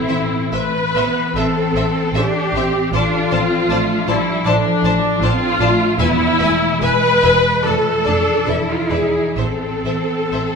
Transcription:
Already playing: timpani A2, harp A2 E4, cello section C4, viola section E4
0.08 double bass section A1, harp E3, violin section C5 E5
0.53 double bass section A1, cello section A3, harp E4, viola section B4, violin section C5 E5
0.94 double bass section A1, harp E3, cello section B3, violin section C5 E5
1.34 double bass section A1, harp A2, cello section C4, viola section A4, violin section C5 E5
1.74 double bass section A1, harp A3, violin section C5 E5
2.14 double bass section A1, cello section D4, harp E4, viola section G4, violin section C5 E5
2.53 double bass section A1, harp E3, cello section C4, violin section C5 E5
2.92 double bass section A1, harp A2, cello section D4, viola section F4, violin section C5 D5 A5
3.30 double bass section A1, harp F3, cello section C4, violin section C5 D5 A5
3.69 double bass section A1, cello section A3, harp D4, violin section C5 D5 A5
4.07 double bass section A1, harp F3, cello section G3, viola section E4, violin section C5 D5 A5
4.45 double bass section A1, harp A2, cello section F3, viola section D4, violin section C5 D5 A5
4.84 double bass section A1, harp A3, violin section C5 D5 A5
5.21 double bass section A1, cello section C4, harp D4, viola section F4, violin section C5 D5 A5
5.59 double bass section A1, harp F3, cello section A3, violin section C5 D5 A5
5.99 double bass section E1, harp E2, cello section B3, viola section E4, violin section B4 E5 G#5
6.39 double bass section E1, harp B2, cello section A3, violin section B4 E5 G#5
6.81 double bass section E1, cello section G#3, harp E4, violin section B4 E5 G#5, viola section B4
7.22 double bass section E1, harp B2, violin section B4 E5 G#5
7.63 double bass section F1, harp F2, cello section A3, viola section A4, violin section D5 A5
8.05 double bass section F1, harp D4 D5, cello section D4, violin section D5 A5
8.46 double bass section E1, harp E2, cello section E4, violin section B4 D5 E5
8.71 viola section F4
8.90 double bass section E1, harp E4 D5, viola section G#4, violin section B4 D5 E5
9.37 double bass section A1, harp A2, cello section C4, viola section A4, violin section C5 E5
9.84 double bass section A1, harp E3, violin section C5 E5
10.32 double bass section A1, harp E4, violin section C5 E5

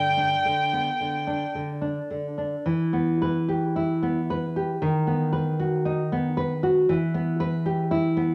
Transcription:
Already playing: nylon-string guitar G2 D3, violin G5
0.17 nylon-string guitar D4
0.45 nylon-string guitar D3
0.73 nylon-string guitar B3
1.01 nylon-string guitar D3
1.27 nylon-string guitar D4
1.55 nylon-string guitar D3
1.81 nylon-string guitar D4
2.10 nylon-string guitar D3
2.38 nylon-string guitar D4
2.66 nylon-string guitar E3
2.93 nylon-string guitar B3
3.22 nylon-string guitar B4
3.48 nylon-string guitar G4
3.76 nylon-string guitar E4
4.03 nylon-string guitar B3
4.30 nylon-string guitar B4
4.56 nylon-string guitar G4
4.82 nylon-string guitar D#3
5.07 nylon-string guitar B3
5.33 nylon-string guitar B4
5.60 nylon-string guitar F#4
5.85 nylon-string guitar D#4
6.12 nylon-string guitar B3
6.37 nylon-string guitar B4
6.63 nylon-string guitar F#4
6.89 nylon-string guitar E3
7.14 nylon-string guitar B3
7.40 nylon-string guitar B4
7.66 nylon-string guitar G4
7.91 nylon-string guitar E4
8.17 nylon-string guitar B3

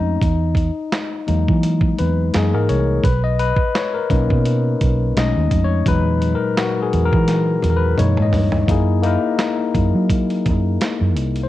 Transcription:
Already playing: fingered electric bass F2, tine electric piano G#3 A3 C#4 D#4
0.21 fingered electric bass E2, kick, closed hi-hat
0.55 kick, closed hi-hat
0.92 snare, closed hi-hat
1.27 fingered electric bass E2, tine electric piano F#3 G#3 A#3 D#4, closed hi-hat
1.48 fingered electric bass E3, kick
1.63 closed hi-hat
1.81 kick
1.98 fingered electric bass E2, tine electric piano B4, closed hi-hat
2.33 fingered electric bass F#2, tine electric piano E3 G#3 A#3 D#4 G#4, snare, closed hi-hat
2.54 fingered electric bass G#2, tine electric piano A#4
2.69 fingered electric bass C2, tine electric piano C#5, closed hi-hat
3.04 fingered electric bass B1, tine electric piano B4, kick, closed hi-hat
3.24 tine electric piano D#5
3.39 tine electric piano B4, closed hi-hat
3.57 kick
3.75 tine electric piano C#5, snare, closed hi-hat
3.94 tine electric piano A#4
4.10 fingered electric bass B1, tine electric piano A#3 C#4 D#4, kick, closed hi-hat
4.30 fingered electric bass B2, kick
4.46 closed hi-hat
4.81 fingered electric bass B1, kick, closed hi-hat
5.16 fingered electric bass B1, tine electric piano G#3 A3 C#4 D#4 D#5, snare, closed hi-hat
5.37 fingered electric bass D#2
5.51 fingered electric bass F2, kick, closed hi-hat
5.64 tine electric piano C#5
5.86 fingered electric bass E2, tine electric piano A#2 F#3 G#3 D#4 B4, kick, closed hi-hat
6.22 closed hi-hat
6.35 tine electric piano A#4
6.57 tine electric piano F#4, snare, closed hi-hat
6.83 tine electric piano G#4
6.93 fingered electric bass E2, closed hi-hat
7.06 tine electric piano A#4
7.13 fingered electric bass E3, kick
7.28 snare, closed hi-hat
7.62 fingered electric bass E2, closed hi-hat, high tom
7.70 tine electric piano A#4
7.77 tine electric piano B4
7.97 fingered electric bass F#2, tine electric piano E3 G#3 A#3 D#4 C#5, closed hi-hat, mid tom
8.17 fingered electric bass G#2, mid tom
8.22 tine electric piano D#5
8.33 fingered electric bass G2, floor tom, open hi-hat
8.52 floor tom
8.67 fingered electric bass F#2, tine electric piano A#3 D#4 E4 G#4, kick, closed hi-hat
9.02 tine electric piano A#3 D#4 E4 A#4, closed hi-hat
9.39 snare, closed hi-hat
9.75 fingered electric bass F#2, kick, closed hi-hat
9.95 fingered electric bass F#3
10.10 kick, closed hi-hat
10.30 closed hi-hat
10.46 fingered electric bass F#2, kick, closed hi-hat
10.81 snare, closed hi-hat
11.01 fingered electric bass F#2
11.16 fingered electric bass C2, closed hi-hat
11.36 closed hi-hat
11.43 tine electric piano C5

